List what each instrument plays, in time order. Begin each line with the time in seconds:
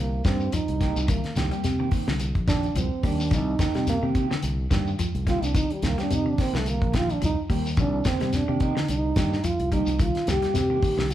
Already playing: fingered electric bass C2
0.00 trombone A#3
0.25 fingered electric bass G2, clean electric guitar D#3 A#3 C4 G4, trombone C4, kick, snare, closed hi-hat, shekere
0.40 shekere
0.52 clean electric guitar F3, trombone D#4, closed hi-hat, shekere
0.68 fingered electric bass C2, closed hi-hat
0.80 clean electric guitar D#3 A#3 C4 G4, kick, snare, closed hi-hat, shekere
0.96 fingered electric bass C2, closed hi-hat, shekere
1.08 clean electric guitar D#3, trombone A#3, kick, closed hi-hat, shekere
1.24 snare, closed hi-hat
1.36 fingered electric bass C2, clean electric guitar D#3 A#3 C4 G4, snare, closed hi-hat, shekere
1.51 clean electric guitar G3 A#3 C4 G4, closed hi-hat, shekere
1.64 fingered electric bass C3, snare, closed hi-hat, shekere
1.79 clean electric guitar D#3 A#3 C4 G4
1.91 clean electric guitar D#3 A#3 C4, kick, open hi-hat, shekere
2.08 fingered electric bass C2, clean electric guitar D3, snare
2.20 closed hi-hat, shekere
2.35 fingered electric bass A#1, kick, closed hi-hat
2.48 clean electric guitar D#3 A#3 C4 G4, trombone D4, kick, snare, closed hi-hat, shekere
2.63 closed hi-hat, shekere
2.75 fingered electric bass C2, clean electric guitar F3, trombone C4, closed hi-hat, shekere
3.03 fingered electric bass D#2, clean electric guitar D#3 G3 A#3 C4 G4, trombone D4, kick, open hi-hat, shekere
3.20 shekere
3.31 fingered electric bass C2, clean electric guitar D#3, trombone D#4, kick, snare, closed hi-hat, shekere
3.59 clean electric guitar D#3 A#3 C4 G4, kick, snare, closed hi-hat, shekere
3.74 fingered electric bass C3, clean electric guitar G3 C4 G4, muted clean electric guitar stroke, snare, closed hi-hat, shekere
3.87 trombone A#3, snare, closed hi-hat, shekere
4.02 fingered electric bass C3, clean electric guitar D#3 A#3 C4 G4
4.15 clean electric guitar D#3 A#3 C4 G4, kick, closed hi-hat, shekere
4.31 clean electric guitar D3, muted fingered electric bass stroke, snare
4.42 fingered electric bass C2, closed hi-hat, shekere
4.71 fingered electric bass G2, clean electric guitar D#3 A#3 C4 G4, kick, snare, closed hi-hat, shekere
4.87 shekere
4.99 clean electric guitar F3, closed hi-hat, shekere
5.15 fingered electric bass C2, closed hi-hat
5.27 clean electric guitar D#3 G3 A#3 C4 G4, trombone F4, kick, snare, closed hi-hat, shekere
5.42 fingered electric bass C2, trombone D4, closed hi-hat, shekere
5.55 clean electric guitar D#3, trombone D#4, kick, closed hi-hat, shekere
5.70 trombone G3, closed hi-hat
5.82 fingered electric bass C2, clean electric guitar D#3 C4 G4, trombone A#3, muted clean electric guitar stroke, snare, closed hi-hat, shekere
5.98 clean electric guitar G3 A#3 C4 G4, trombone D4, snare, closed hi-hat, shekere
6.10 fingered electric bass C3, trombone D#4, closed hi-hat, shekere
6.26 clean electric guitar D#3, trombone D4
6.37 clean electric guitar D#3 A#3 C4 G4, trombone C4, kick, snare, open hi-hat, shekere
6.53 fingered electric bass C2, clean electric guitar D3, snare
6.58 trombone A3
6.66 trombone A#3, closed hi-hat, shekere
6.82 fingered electric bass A#1, kick, closed hi-hat
6.93 clean electric guitar D#3 A#3 C4 G4, trombone F4, kick, snare, closed hi-hat, shekere
7.09 trombone D4, closed hi-hat, shekere
7.22 fingered electric bass C2, clean electric guitar F3, trombone D#4, closed hi-hat, shekere
7.49 fingered electric bass D#2, clean electric guitar D#3 G3 A#3 C4 G4, kick, open hi-hat, shekere
7.66 shekere
7.77 fingered electric bass C2, clean electric guitar D#3, trombone D4, kick, closed hi-hat, shekere
8.04 clean electric guitar D#3 A#3 C4 G4, trombone C4, kick, snare, closed hi-hat, shekere
8.20 fingered electric bass C3, clean electric guitar G3, snare, closed hi-hat, shekere
8.33 trombone D4, snare, closed hi-hat, shekere
8.48 fingered electric bass C3, clean electric guitar D#3 A#3 G4, muted clean electric guitar stroke
8.60 clean electric guitar D#3 A#3 C4 G4, trombone D#4, kick, closed hi-hat, shekere
8.75 clean electric guitar D3, muted fingered electric bass stroke, snare
8.88 fingered electric bass C2, trombone D#4, closed hi-hat, shekere
9.16 fingered electric bass G2, clean electric guitar D#3 A#3 C4 G4, kick, snare, closed hi-hat, shekere
9.32 snare, shekere
9.44 clean electric guitar F3, trombone F4, closed hi-hat, shekere
9.60 fingered electric bass C2, closed hi-hat
9.72 clean electric guitar D#3 G3 A#3 C4 G4, trombone D#4, kick, closed hi-hat, shekere
9.86 fingered electric bass C2, closed hi-hat, shekere
9.99 clean electric guitar D#3, trombone F4, kick, closed hi-hat, shekere
10.15 snare, closed hi-hat
10.27 fingered electric bass C2, clean electric guitar D#3 A#3 C4 G4, trombone G4, snare, closed hi-hat, shekere
10.42 clean electric guitar G3 A#3 C4 G4, snare, closed hi-hat, shekere
10.54 fingered electric bass C3, snare, closed hi-hat, shekere
10.58 trombone G4
10.70 clean electric guitar D#3 A#3 C4 G4
10.82 clean electric guitar D#3 A#3 C4 G4, kick, open hi-hat, shekere
10.97 fingered electric bass C2, clean electric guitar D3, snare
11.10 closed hi-hat